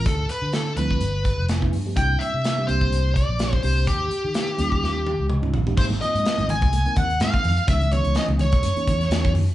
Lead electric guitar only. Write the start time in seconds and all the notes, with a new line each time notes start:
0.06 A4
0.30 B4
0.54 A4
0.78 B4
1.97 G5
2.19 E5
2.67 C5
3.14 D5
3.63 C5
3.87 G4
5.78 C5
6.01 D#5
6.50 G#5
6.97 F#5
7.21 F5
7.69 E5
7.93 C#5
8.17 D#5
8.41 C#5